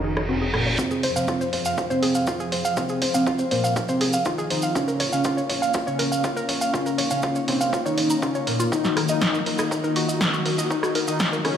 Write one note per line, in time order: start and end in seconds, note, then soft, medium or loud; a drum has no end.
0.00 0.76 F#1 medium
0.00 0.84 F2 medium
0.00 0.75 C#4 medium
0.00 0.20 D#4 medium
0.00 0.75 F#4 medium
0.00 0.75 G#4 medium
0.00 0.75 A#4 medium
0.00 reverse cymbal medium
0.04 0.09 G#4 loud
0.17 0.22 C#5 medium
0.17 cross-stick soft
0.29 0.48 C4 medium
0.29 0.32 F#4 loud
0.42 0.47 G#4 loud
0.53 0.72 A#3 medium
0.53 0.59 A#4 medium
0.53 cross-stick medium
0.66 0.69 C#5 medium
0.78 4.71 F3 medium
0.78 1.06 C4 loud
0.78 4.71 C4 medium
0.78 0.82 F4 medium
0.78 6.70 F4 medium
0.78 4.71 G#4 medium
0.78 kick loud
0.78 cabasa medium
0.91 0.96 G#4 medium
0.91 cabasa soft
1.03 1.23 F1 medium
1.03 1.06 C5 loud
1.03 open hi-hat loud
1.16 1.44 C4 medium
1.16 1.23 F5 loud
1.16 cabasa medium
1.28 1.33 F4 loud
1.28 kick loud
1.28 cabasa medium
1.41 1.46 C5 medium
1.41 cabasa soft
1.53 1.73 F1 medium
1.53 1.61 C5 medium
1.53 open hi-hat medium
1.65 1.69 F5 loud
1.65 cabasa medium
1.78 1.81 F4 medium
1.78 kick loud
1.78 cabasa medium
1.90 2.27 C4 medium
1.90 1.98 C5 loud
1.90 cabasa soft
2.02 2.22 F1 medium
2.02 2.08 G#4 medium
2.02 open hi-hat loud
2.15 2.20 F5 medium
2.15 cabasa medium
2.27 2.31 F4 medium
2.27 kick loud
2.27 cabasa medium
2.40 2.45 G#4 loud
2.40 cabasa soft
2.52 2.72 F1 medium
2.52 2.57 C5 medium
2.52 open hi-hat loud
2.65 2.68 F5 loud
2.65 cabasa medium
2.77 3.05 C4 medium
2.77 2.80 F4 medium
2.77 kick loud
2.77 cabasa medium
2.89 2.95 G#4 medium
2.89 cabasa soft
3.02 3.22 F1 medium
3.02 3.05 C5 loud
3.02 open hi-hat loud
3.14 3.42 C4 medium
3.14 3.22 F5 loud
3.14 cabasa medium
3.26 3.32 F4 medium
3.26 kick loud
3.26 cabasa medium
3.39 3.44 C5 medium
3.39 cabasa soft
3.51 3.71 F1 medium
3.51 3.79 A#3 loud
3.51 3.59 C5 medium
3.51 open hi-hat loud
3.64 3.67 F5 loud
3.64 cabasa medium
3.76 3.79 F4 medium
3.76 kick loud
3.76 cabasa medium
3.89 4.17 C4 medium
3.89 3.96 C5 loud
3.89 cabasa soft
4.01 4.21 F1 medium
4.01 4.06 G#4 medium
4.01 open hi-hat loud
4.13 4.18 F5 medium
4.13 cabasa medium
4.25 4.44 D#4 medium
4.25 4.29 F4 medium
4.25 kick loud
4.25 cabasa medium
4.38 4.43 G#4 loud
4.38 cabasa soft
4.50 4.70 F1 medium
4.50 4.69 D#4 medium
4.50 4.56 C5 medium
4.50 open hi-hat loud
4.62 4.66 F5 loud
4.62 cabasa medium
4.75 11.57 A#3 medium
4.75 5.03 C#4 loud
4.75 8.68 C#4 medium
4.75 4.78 F4 medium
4.75 kick loud
4.75 cabasa medium
4.88 4.93 A#4 medium
4.88 cabasa soft
5.00 5.20 A#1 medium
5.00 5.03 C#5 loud
5.00 open hi-hat loud
5.13 5.41 C#4 loud
5.13 5.20 F5 loud
5.13 cabasa medium
5.24 5.30 F4 loud
5.24 kick loud
5.24 cabasa medium
5.37 5.42 C#5 medium
5.37 cabasa soft
5.49 5.70 A#1 medium
5.49 5.57 C#5 medium
5.49 open hi-hat loud
5.62 5.65 F5 loud
5.62 cabasa medium
5.74 5.77 F4 medium
5.74 kick loud
5.74 cabasa medium
5.87 6.24 C#4 medium
5.87 5.94 C#5 loud
5.87 cabasa soft
5.99 6.19 A#1 medium
5.99 6.04 A#4 loud
5.99 open hi-hat loud
6.12 6.17 F5 medium
6.12 cabasa medium
6.24 6.27 F4 loud
6.24 kick loud
6.24 cabasa medium
6.37 6.42 A#4 loud
6.37 cabasa soft
6.49 6.69 A#1 medium
6.49 6.54 C#5 medium
6.49 open hi-hat loud
6.61 6.64 F5 loud
6.61 cabasa medium
6.73 7.02 C#4 loud
6.73 8.70 D#4 medium
6.73 6.77 F4 medium
6.73 kick loud
6.73 cabasa medium
6.86 6.91 A#4 medium
6.86 cabasa soft
6.98 7.18 A#1 medium
6.98 7.01 C#5 loud
6.98 open hi-hat loud
7.10 7.39 C#4 medium
7.10 7.18 F5 loud
7.10 cabasa medium
7.22 7.28 F4 medium
7.22 kick loud
7.22 cabasa medium
7.35 7.41 C#5 medium
7.35 cabasa soft
7.48 7.68 A#1 loud
7.48 7.76 C4 loud
7.48 7.56 C#5 medium
7.48 open hi-hat loud
7.61 7.64 F5 loud
7.61 cabasa medium
7.73 7.76 F4 medium
7.73 kick loud
7.73 cabasa medium
7.85 8.13 D#4 medium
7.85 7.93 C#5 loud
7.85 cabasa soft
7.97 8.17 A#1 medium
7.97 8.03 C#5 medium
7.97 open hi-hat loud
8.10 8.15 A#5 medium
8.10 cabasa medium
8.22 8.41 C#4 medium
8.22 8.28 F4 loud
8.22 kick loud
8.22 cabasa medium
8.35 8.40 C#5 loud
8.35 cabasa soft
8.47 8.67 A#1 medium
8.47 8.66 A#3 medium
8.47 8.52 A#4 medium
8.47 open hi-hat loud
8.60 8.63 F4 loud
8.60 cabasa medium
8.72 11.57 D#3 medium
8.72 8.75 D#4 medium
8.72 9.00 D#4 loud
8.72 10.68 F4 medium
8.72 11.57 F#4 medium
8.72 kick loud
8.72 riser medium
8.72 cabasa medium
8.84 8.90 F#4 medium
8.84 snare soft
8.84 cabasa soft
8.97 9.17 D#1 medium
8.97 9.00 A#4 loud
8.97 cross-stick soft
8.97 open hi-hat loud
9.08 9.37 D#4 loud
9.08 9.17 D#5 loud
9.08 cabasa medium
9.21 9.27 D#4 loud
9.21 kick loud
9.21 snare loud
9.21 cabasa medium
9.34 9.39 A#4 medium
9.34 cabasa soft
9.46 9.66 D#1 loud
9.46 9.54 A#4 medium
9.46 open hi-hat loud
9.58 9.62 D#5 loud
9.58 cross-stick soft
9.58 cabasa medium
9.71 9.74 D#4 medium
9.71 kick loud
9.71 cabasa medium
9.84 10.21 D#4 medium
9.84 9.91 A#4 loud
9.84 cabasa soft
9.96 10.16 D#1 medium
9.96 10.01 F#4 medium
9.96 open hi-hat loud
10.09 10.13 D#5 medium
10.09 cabasa medium
10.21 10.24 D#4 loud
10.21 kick loud
10.21 cross-stick soft
10.21 snare loud
10.21 cabasa medium
10.33 10.38 F#4 loud
10.33 cabasa soft
10.45 10.65 D#1 medium
10.45 10.51 A#4 medium
10.45 open hi-hat loud
10.58 10.61 D#5 loud
10.58 cabasa medium
10.70 10.98 D#4 loud
10.70 11.57 D#4 medium
10.70 10.74 D#4 medium
10.70 kick loud
10.70 cabasa medium
10.83 10.88 F#4 medium
10.83 cross-stick soft
10.83 cabasa soft
10.95 11.15 D#1 medium
10.95 10.98 A#4 loud
10.95 open hi-hat loud
11.07 11.36 D#4 medium
11.07 11.15 D#5 loud
11.07 cabasa medium
11.20 11.25 D#4 loud
11.20 kick loud
11.20 snare loud
11.20 cabasa medium
11.33 11.38 A#4 medium
11.33 cabasa soft
11.45 11.57 D#1 loud
11.45 11.57 C#4 loud
11.45 11.52 A#4 medium
11.45 cross-stick soft
11.45 open hi-hat loud